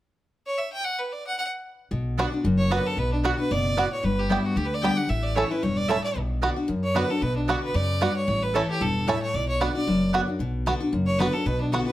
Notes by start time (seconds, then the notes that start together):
0.46 C#5
0.58 E5
0.73 G5
0.84 F#5
0.99 B4
1.13 D5
1.27 F#5
1.38 F#5
1.91 B1 B2
2.18 D3 B3 D4 F#4 D5 F#5
2.32 D4 F#4
2.44 F#1 F#2
2.58 C#5
2.70 D3 B3 D4 F#4 B4 D5 F#5
2.86 A4
2.97 B1 B2 B4
3.13 D4
3.23 D3 B3 D4 F#4 D5 F#5
3.38 D4 F#4 B4
3.50 F#1 B2 D5
3.77 A2 B3 F#4 D5 F#5
3.93 C#5
4.03 G1 G2 B4
4.19 G4
4.29 G3 B3 D4 E4 G4 D5 G5
4.45 F#4
4.56 D2 D3 G4
4.65 B4
4.74 D5
4.82 G3 B3 D4 G4 D5 G5
4.96 D4 G4 F#5
5.09 A1 A2 E5
5.23 D5
5.35 E3 A3 C#4 E4 A4 C#5 A5
5.50 C#4 E4 B4
5.63 E1 G2 C#5
5.76 D5
5.88 A2 A3 C#4 E4 A4 C#5 E5 A5
6.04 D5
6.15 B1 B2
6.42 D3 B3 D4 F#4 D5 F#5
6.56 D4 F#4
6.68 F#2
6.83 C#5
6.94 D3 B3 D4 F#4 B4 D5 F#5
7.10 D4 F#4 A4
7.21 B1 B2 B4
7.37 D4
7.48 D3 B3 D4 F#4 D5 F#5
7.63 B4
7.74 F#2 C#3 D5
8.01 G2 B3 F#4 D5 F#5
8.17 C#5
8.28 A1 A2 C#5
8.43 B4
8.54 E3 A3 C#4 E4 A4 C#5 A5
8.70 G4
8.81 E1 G2 A4
9.07 A2 A3 C#4 E4 A4 C#5 E5 A5
9.22 C#5
9.33 B1 B2 D5
9.48 C#5
9.60 D3 B3 D4 F#4 D5 F#5
9.75 D4 F#4 D5
9.87 F#1 F#2
10.13 D3 B3 D4 F#4 D5 F#5
10.28 D4 F#4
10.39 B1 B2
10.66 D3 B3 D4 F#4
10.80 D4 F#4
10.92 F#1 F#2
11.06 C#5
11.19 D3 B3 D4 F#4 B4
11.33 D4 F#4 A4
11.46 B1 B2 B4
11.61 D4
11.72 D3 B3 D4 F#4
11.86 D4 F#4 B4